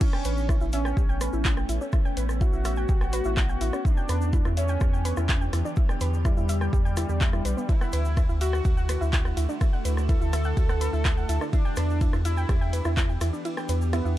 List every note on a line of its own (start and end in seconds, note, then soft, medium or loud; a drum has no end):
0.01 3.81 A3 medium
0.01 7.65 B3 medium
0.01 0.64 C#4 loud
0.01 3.81 C#4 medium
0.01 0.05 E4 medium
0.01 0.05 E5 medium
0.01 kick loud
0.01 crash loud
0.01 shaker soft
0.13 0.23 G5 medium
0.13 0.23 G6 medium
0.13 cross-stick medium
0.13 shaker soft
0.25 0.57 A1 loud
0.25 0.32 B4 medium
0.25 0.32 B5 medium
0.25 open hi-hat loud
0.25 shaker medium
0.37 shaker soft
0.49 0.53 E4 loud
0.49 0.53 E5 medium
0.49 kick loud
0.49 cross-stick medium
0.49 shaker medium
0.61 0.93 A1 loud
0.61 0.68 E4 medium
0.61 0.68 E5 medium
0.61 shaker soft
0.73 1.60 C#4 loud
0.73 0.80 E5 medium
0.73 0.80 E6 medium
0.73 open hi-hat loud
0.73 shaker medium
0.85 0.89 G5 medium
0.85 0.89 G6 medium
0.85 cross-stick medium
0.85 shaker soft
0.97 1.29 A1 medium
0.97 1.01 G4 medium
0.97 1.01 G5 medium
0.97 kick loud
0.97 shaker medium
1.09 1.19 G5 medium
1.09 1.19 G6 medium
1.09 shaker soft
1.21 1.28 B4 medium
1.21 1.28 B5 medium
1.21 cross-stick medium
1.21 open hi-hat loud
1.21 shaker loud
1.33 1.65 A1 medium
1.33 1.43 E4 medium
1.33 1.43 E5 medium
1.33 shaker soft
1.44 1.49 E4 loud
1.44 1.49 E5 medium
1.44 kick loud
1.44 clap loud
1.44 shaker medium
1.57 1.67 G5 medium
1.57 1.67 G6 medium
1.57 cross-stick medium
1.57 shaker soft
1.69 1.79 A1 loud
1.69 1.76 E4 medium
1.69 1.76 E5 medium
1.69 open hi-hat loud
1.69 shaker medium
1.81 1.88 C#4 medium
1.81 1.88 C#5 medium
1.81 shaker soft
1.92 1.97 E4 medium
1.92 1.97 E5 medium
1.92 kick loud
1.92 cross-stick medium
1.92 shaker medium
2.05 2.15 G5 medium
2.05 2.15 G6 medium
2.05 shaker soft
2.17 2.49 A1 loud
2.17 2.24 B4 medium
2.17 2.24 B5 medium
2.17 open hi-hat loud
2.17 shaker medium
2.29 cross-stick medium
2.29 shaker soft
2.41 2.45 E4 loud
2.41 3.87 F#4 loud
2.41 2.45 E5 medium
2.41 kick loud
2.41 shaker soft
2.53 2.85 A1 loud
2.53 2.60 E4 medium
2.53 2.60 E5 medium
2.53 shaker soft
2.65 2.72 E5 medium
2.65 2.72 E6 medium
2.65 cross-stick medium
2.65 open hi-hat loud
2.65 shaker medium
2.76 2.81 G5 medium
2.76 2.81 G6 medium
2.76 shaker soft
2.89 3.21 A1 medium
2.89 2.93 G4 medium
2.89 2.93 G5 medium
2.89 kick loud
2.89 shaker medium
3.01 3.12 G5 medium
3.01 3.12 G6 medium
3.01 cross-stick medium
3.01 shaker soft
3.13 3.20 B4 medium
3.13 3.20 B5 medium
3.13 open hi-hat loud
3.13 shaker loud
3.24 3.57 A1 medium
3.24 3.36 E4 medium
3.24 3.36 E5 medium
3.24 shaker soft
3.37 3.41 E4 loud
3.37 3.41 E5 medium
3.37 kick loud
3.37 cross-stick soft
3.37 clap loud
3.37 shaker medium
3.49 3.60 G5 medium
3.49 3.60 G6 medium
3.49 shaker soft
3.61 3.71 A1 loud
3.61 3.68 E4 medium
3.61 3.68 E5 medium
3.61 open hi-hat loud
3.61 shaker medium
3.73 3.80 C#4 medium
3.73 3.80 C#5 medium
3.73 cross-stick medium
3.73 shaker soft
3.85 7.65 D3 medium
3.85 7.65 E3 medium
3.85 4.48 D4 loud
3.85 3.89 E4 medium
3.85 7.65 G4 medium
3.85 3.89 E5 medium
3.85 kick loud
3.85 shaker medium
3.97 4.07 G5 medium
3.97 4.07 G6 medium
3.97 shaker soft
4.09 4.41 E2 loud
4.09 4.16 B4 medium
4.09 4.16 B5 medium
4.09 cross-stick soft
4.09 open hi-hat loud
4.09 shaker medium
4.21 shaker soft
4.33 4.37 E4 loud
4.33 4.37 E5 medium
4.33 kick loud
4.33 shaker medium
4.45 4.77 E2 loud
4.45 4.52 E4 medium
4.45 4.52 E5 medium
4.45 cross-stick medium
4.45 shaker soft
4.57 5.44 C#4 loud
4.57 4.64 E5 medium
4.57 4.64 E6 medium
4.57 open hi-hat loud
4.57 shaker medium
4.68 4.73 G5 medium
4.68 4.73 G6 medium
4.68 shaker soft
4.81 5.13 E2 medium
4.81 4.85 G4 medium
4.81 4.85 G5 medium
4.81 kick loud
4.81 cross-stick medium
4.81 shaker medium
4.93 5.03 G5 medium
4.93 5.03 G6 medium
4.93 shaker soft
5.05 5.12 B4 medium
5.05 5.12 B5 medium
5.05 open hi-hat loud
5.05 shaker loud
5.17 5.49 E2 medium
5.17 5.27 E4 medium
5.17 5.27 E5 medium
5.17 cross-stick medium
5.17 shaker soft
5.29 5.33 E4 loud
5.29 5.33 E5 medium
5.29 kick loud
5.29 clap loud
5.29 shaker medium
5.41 5.51 G5 medium
5.41 5.51 G6 medium
5.41 shaker soft
5.53 5.63 E2 loud
5.53 5.60 E4 medium
5.53 5.60 E5 medium
5.53 cross-stick soft
5.53 open hi-hat loud
5.53 shaker medium
5.65 5.72 D4 medium
5.65 5.72 D5 medium
5.65 shaker soft
5.76 5.81 E4 medium
5.76 5.81 E5 medium
5.76 kick loud
5.76 shaker medium
5.89 5.99 G5 medium
5.89 5.99 G6 medium
5.89 cross-stick medium
5.89 shaker soft
6.01 6.33 E2 loud
6.01 6.08 B4 medium
6.01 6.08 B5 medium
6.01 open hi-hat loud
6.01 shaker loud
6.14 shaker soft
6.25 7.71 G3 loud
6.25 6.29 E4 loud
6.25 6.29 E5 medium
6.25 kick loud
6.25 cross-stick medium
6.25 shaker medium
6.37 6.69 E2 loud
6.37 6.44 E4 medium
6.37 6.44 E5 medium
6.37 shaker soft
6.49 6.56 E5 medium
6.49 6.56 E6 medium
6.49 open hi-hat loud
6.49 shaker loud
6.61 6.65 G5 medium
6.61 6.65 G6 medium
6.61 cross-stick medium
6.61 shaker soft
6.73 7.05 E2 medium
6.73 6.77 G4 medium
6.73 6.77 G5 medium
6.73 kick loud
6.73 shaker medium
6.85 6.95 G5 medium
6.85 6.95 G6 medium
6.85 shaker soft
6.97 7.04 E4 loud
6.97 7.04 E5 medium
6.97 cross-stick medium
6.97 open hi-hat loud
6.97 shaker loud
7.09 7.41 E2 medium
7.09 7.19 G4 medium
7.09 7.19 G5 medium
7.09 shaker soft
7.21 7.28 E5 medium
7.21 7.28 E6 medium
7.21 kick loud
7.21 clap loud
7.21 shaker medium
7.33 7.43 E4 medium
7.33 7.43 E5 medium
7.33 cross-stick medium
7.33 shaker soft
7.45 7.55 B1 loud
7.45 7.52 B4 medium
7.45 7.52 B5 medium
7.45 open hi-hat loud
7.45 shaker medium
7.57 7.64 B3 medium
7.57 7.64 B4 medium
7.57 shaker soft
7.69 11.49 D3 medium
7.69 11.49 A3 medium
7.69 7.73 E4 medium
7.69 8.32 E4 loud
7.69 11.49 E4 medium
7.69 11.49 F#4 medium
7.69 7.73 E5 medium
7.69 kick loud
7.69 ride soft
7.69 shaker medium
7.81 7.91 F#5 medium
7.81 7.91 F#6 medium
7.81 cross-stick medium
7.81 shaker soft
7.93 8.25 D2 loud
7.93 8.00 B4 medium
7.93 8.00 B5 medium
7.93 open hi-hat loud
7.93 ride medium
7.93 shaker medium
8.05 shaker soft
8.17 8.21 E4 loud
8.17 8.21 E5 medium
8.17 kick loud
8.17 cross-stick medium
8.17 ride medium
8.17 shaker medium
8.29 8.61 D2 loud
8.29 8.36 E4 medium
8.29 8.36 E5 medium
8.29 shaker soft
8.41 9.28 F#4 loud
8.41 8.48 E5 medium
8.41 8.48 E6 medium
8.41 open hi-hat loud
8.41 ride medium
8.41 shaker loud
8.53 8.57 F#5 medium
8.53 8.57 F#6 medium
8.53 cross-stick medium
8.53 shaker soft
8.65 8.97 D2 medium
8.65 8.69 F#4 medium
8.65 8.69 F#5 medium
8.65 kick loud
8.65 ride medium
8.65 shaker medium
8.77 8.87 F#5 medium
8.77 8.87 F#6 medium
8.77 shaker soft
8.89 8.96 B4 medium
8.89 8.96 B5 medium
8.89 cross-stick medium
8.89 open hi-hat loud
8.89 ride medium
8.89 shaker medium
9.01 9.33 D2 medium
9.01 9.11 E4 medium
9.01 9.11 E5 medium
9.01 shaker soft
9.13 9.17 E4 loud
9.13 9.17 E5 medium
9.13 kick loud
9.13 clap loud
9.13 ride medium
9.13 shaker soft
9.25 9.35 F#5 medium
9.25 9.35 F#6 medium
9.25 cross-stick medium
9.25 shaker soft
9.37 9.47 D2 loud
9.37 9.44 E4 medium
9.37 9.44 E5 medium
9.37 open hi-hat loud
9.37 ride medium
9.37 shaker medium
9.49 9.56 D4 medium
9.49 9.56 D5 medium
9.49 shaker soft
9.61 9.65 E4 medium
9.61 9.65 E5 medium
9.61 kick loud
9.61 cross-stick medium
9.61 ride medium
9.61 shaker soft
9.73 9.83 F#5 medium
9.73 9.83 F#6 medium
9.73 shaker soft
9.85 10.17 D2 loud
9.85 9.92 B4 medium
9.85 9.92 B5 medium
9.85 open hi-hat loud
9.85 ride medium
9.85 shaker medium
9.97 cross-stick medium
9.97 shaker soft
10.09 10.13 E4 loud
10.09 11.44 A4 loud
10.09 10.13 E5 medium
10.09 kick loud
10.09 ride medium
10.09 shaker medium
10.21 10.53 D2 loud
10.21 10.28 E4 medium
10.21 10.28 E5 medium
10.21 shaker soft
10.33 10.40 E5 medium
10.33 10.40 E6 medium
10.33 cross-stick medium
10.33 open hi-hat loud
10.33 ride medium
10.33 shaker medium
10.44 10.49 F#5 medium
10.44 10.49 F#6 medium
10.44 shaker soft
10.57 10.89 D2 medium
10.57 10.61 F#4 medium
10.57 10.61 F#5 medium
10.57 kick loud
10.57 ride medium
10.57 shaker medium
10.69 10.79 F#5 medium
10.69 10.79 F#6 medium
10.69 cross-stick medium
10.69 shaker soft
10.81 10.88 B4 medium
10.81 10.88 B5 medium
10.81 open hi-hat loud
10.81 ride medium
10.81 shaker medium
10.93 11.25 D2 medium
10.93 11.03 E4 medium
10.93 11.03 E5 medium
10.93 shaker soft
11.05 11.09 E4 loud
11.05 11.09 E5 medium
11.05 kick loud
11.05 cross-stick medium
11.05 clap loud
11.05 ride medium
11.05 shaker medium
11.17 11.27 F#5 medium
11.17 11.27 F#6 medium
11.17 shaker soft
11.29 11.39 D2 loud
11.29 11.36 E4 medium
11.29 11.36 E5 medium
11.29 open hi-hat loud
11.29 ride medium
11.29 shaker medium
11.41 11.48 D4 medium
11.41 11.48 D5 medium
11.41 cross-stick medium
11.41 shaker soft
11.53 14.18 E3 medium
11.53 14.18 B3 medium
11.53 14.18 D4 medium
11.53 12.16 D4 loud
11.53 11.57 E4 medium
11.53 14.18 G4 medium
11.53 11.57 E5 medium
11.53 kick loud
11.53 ride medium
11.53 shaker soft
11.65 11.75 G5 medium
11.65 11.75 G6 medium
11.65 shaker soft
11.76 12.09 E2 loud
11.76 11.84 B4 medium
11.76 11.84 B5 medium
11.76 cross-stick medium
11.76 open hi-hat loud
11.76 ride medium
11.76 shaker medium
11.90 shaker soft
12.01 12.05 E4 loud
12.01 12.05 E5 medium
12.01 kick loud
12.01 ride medium
12.01 shaker medium
12.13 12.45 E2 loud
12.13 12.20 E4 medium
12.13 12.20 E5 medium
12.13 cross-stick medium
12.13 shaker soft
12.25 13.12 E4 loud
12.25 12.32 E5 medium
12.25 12.32 E6 medium
12.25 open hi-hat loud
12.25 ride medium
12.25 shaker medium
12.37 12.41 G5 medium
12.37 12.41 G6 medium
12.37 shaker soft
12.49 12.81 E2 medium
12.49 12.53 G4 medium
12.49 12.53 G5 medium
12.49 kick loud
12.49 cross-stick medium
12.49 ride medium
12.49 shaker soft
12.61 12.71 G5 medium
12.61 12.71 G6 medium
12.61 shaker soft
12.73 12.80 B4 medium
12.73 12.80 B5 medium
12.73 open hi-hat loud
12.73 ride medium
12.73 shaker medium
12.85 13.17 E2 medium
12.85 12.95 E4 medium
12.85 12.95 E5 medium
12.85 cross-stick medium
12.85 shaker soft
12.97 13.01 E4 loud
12.97 13.01 E5 medium
12.97 kick loud
12.97 clap loud
12.97 ride medium
12.97 shaker medium
13.09 13.19 G5 medium
13.09 13.19 G6 medium
13.09 shaker soft
13.21 13.31 E2 loud
13.21 13.28 E4 medium
13.21 13.28 E5 medium
13.21 cross-stick medium
13.21 open hi-hat loud
13.21 ride medium
13.21 shaker medium
13.33 13.40 D4 medium
13.33 13.40 D5 medium
13.33 shaker soft
13.45 13.49 E4 medium
13.45 13.49 E5 medium
13.45 ride medium
13.45 shaker medium
13.57 13.67 G5 medium
13.57 13.67 G6 medium
13.57 cross-stick medium
13.57 shaker soft
13.69 14.01 E2 loud
13.69 13.76 B4 medium
13.69 13.76 B5 medium
13.69 open hi-hat loud
13.69 ride medium
13.69 shaker loud
13.82 shaker soft
13.93 14.18 B3 loud
13.93 13.97 E4 loud
13.93 13.97 E5 medium
13.93 cross-stick medium
13.93 ride medium
13.93 shaker soft
14.05 14.18 E2 loud
14.05 14.12 E4 medium
14.05 14.12 E5 medium
14.05 shaker soft